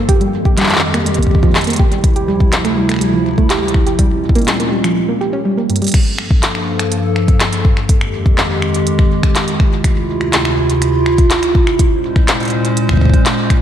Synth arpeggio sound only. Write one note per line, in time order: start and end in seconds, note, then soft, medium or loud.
0.09 0.16 G4 medium
0.21 0.28 G3 medium
0.45 0.50 G4 medium
0.57 0.62 G3 loud
0.94 0.98 A#3 loud
1.06 1.13 G3 medium
1.18 1.26 A#3 medium
1.31 1.38 G3 medium
1.43 1.50 F3 loud
1.67 1.72 A#3 medium
1.79 1.87 G4 medium
1.91 1.99 G3 medium
2.16 2.20 G4 medium
2.28 2.32 G3 loud
2.65 2.69 A3 loud
2.77 2.84 G3 medium
2.89 2.96 A3 medium
3.01 3.09 G3 medium
3.13 3.21 F3 loud
3.38 3.42 A3 medium
3.50 3.57 G4 medium
3.62 3.70 G3 medium
3.87 3.91 G4 medium
3.99 4.03 G3 loud
4.35 4.40 A#3 loud
4.48 4.55 G3 medium
4.60 4.67 A#3 medium
4.72 4.79 G3 medium
4.84 4.91 F3 loud
5.09 5.13 A#3 medium
5.21 5.28 G4 medium
5.33 5.37 C#4 loud
5.45 5.52 G3 medium
5.57 5.68 A#3 medium
5.70 5.81 G2 medium
5.82 5.89 G3 medium